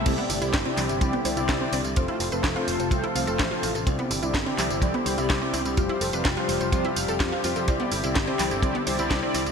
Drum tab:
CC |x---------------|----------------|----------------|----------------|
HH |xxoxxxoxxxoxx-ox|xxoxxxoxxxoxx-ox|xxoxxxoxxxoxx-ox|xxoxxxoxxxoxx-ox|
TB |x-xxx-xxx-xxx-xx|x-xxx-xxx-xxx-xx|x-xxx-xxx-xxx-xx|x-xxx-xxx-xxx-xx|
CP |----x-x-----x---|----x-------x---|----x-x-----x---|----x-------x---|
SD |----o-------o---|----o-------o---|----o-------o---|----o-------o---|
T1 |------o-o-------|----------------|------o-o-------|------o---------|
BD |o---o---o---o---|o---o---o---o---|o---o---o---o---|o---o---o---o---|

CC |----------------|
HH |xxoxxxoxxxoxx-ox|
TB |x-xxx-xxx-xxx-xx|
CP |----x-x-----x---|
SD |----o-------o---|
T1 |------o-o-------|
BD |o---o---o---o---|